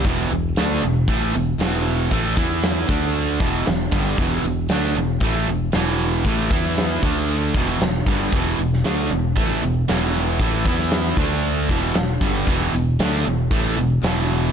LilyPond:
<<
  \new Staff \with { instrumentName = "Distorted electric guitar" } { \clef bass \time 4/4 \key d \lydian \tempo 4 = 116 <e, b, e>8 <e, b,>8 <d a d'>8 <e, b,>8 <a, e a>8 <e, b,>8 <e, b, e>4 | <a, e a>8 <e b e'>4 <d a d'>4 <e, b, e>8 <e, b,>8 <g, d g>8 | <e, b, e>8 <e, b,>8 <d a d'>8 <e, b,>8 <a, e a>8 <e, b,>8 <e, b, e>4 | <a, e a>8 <e b e'>4 <d a d'>4 <e, b, e>8 <e, b,>8 <g, d g>8 |
<e, b, e>8 <e, b,>8 <d a d'>8 <e, b,>8 <a, e a>8 <e, b,>8 <e, b, e>4 | <a, e a>8 <e b e'>4 <d a d'>4 <e, b, e>8 <e, b,>8 <g, d g>8 | <e, b, e>8 <e, b,>8 <d a d'>8 <e, b,>8 <a, e a>8 <e, b,>8 <e, b, e>4 | }
  \new Staff \with { instrumentName = "Overdriven electric guitar" } { \clef bass \time 4/4 \key d \lydian <e, b, e>8 <e, b,>8 <d a d'>8 <e, b,>8 <a, e a>8 <e, b,>8 <e, b, e>4 | <a, e a>8 <e b e'>4 <d a d'>4 <e, b, e>8 <e, b,>8 <g, d g>8 | <e, b, e>8 <e, b,>8 <d a d'>8 <e, b,>8 <a, e a>8 <e, b,>8 <e, b, e>4 | <a, e a>8 <e b e'>4 <d a d'>4 <e, b, e>8 <e, b,>8 <g, d g>8 |
<e, b, e>8 <e, b,>8 <d a d'>8 <e, b,>8 <a, e a>8 <e, b,>8 <e, b, e>4 | <a, e a>8 <e b e'>4 <d a d'>4 <e, b, e>8 <e, b,>8 <g, d g>8 | <e, b, e>8 <e, b,>8 <d a d'>8 <e, b,>8 <a, e a>8 <e, b,>8 <e, b, e>4 | }
  \new Staff \with { instrumentName = "Fingered electric bass" } { \clef bass \time 4/4 \key d \lydian e,,8 e,,8 d,8 e,,8 a,,8 e,,8 e,,4 | a,,8 e,4 d,4 e,,8 e,,8 g,,8 | e,,8 e,,8 d,8 e,,8 a,,8 e,,8 e,,4 | a,,8 e,4 d,4 e,,8 e,,8 g,,8 |
e,,8 e,,8 d,8 e,,8 a,,8 e,,8 e,,4 | a,,8 e,4 d,4 e,,8 e,,8 g,,8 | e,,8 e,,8 d,8 e,,8 a,,8 e,,8 e,,4 | }
  \new DrumStaff \with { instrumentName = "Drums" } \drummode { \time 4/4 <hh bd>8 hh8 <hh sn>8 hh8 <hh bd>8 hh8 <hh sn>8 hh8 | <hh bd>8 <hh bd>8 <hh sn>8 <hh bd>8 hh8 <hh bd>8 <hh sn>8 <hh bd>8 | <hh bd>8 hh8 <hh sn>8 hh8 <hh bd>8 hh8 <hh sn>8 hh8 | <hh bd>8 <hh bd>16 sn16 <hh sn>8 <hh bd>8 hh8 <hh bd>8 <hh sn>8 <hh bd>8 |
<hh bd>8 hh16 sn16 <hh sn>8 hh8 <hh bd>8 hh8 <hh sn>8 hh8 | <hh bd>8 <hh bd>16 sn16 <hh sn>8 <hh bd>8 hh8 <hh bd>8 <hh sn>8 <hh bd>8 | <hh bd>8 hh8 <hh sn>8 hh8 <hh bd>8 hh8 <hh sn>8 hh8 | }
>>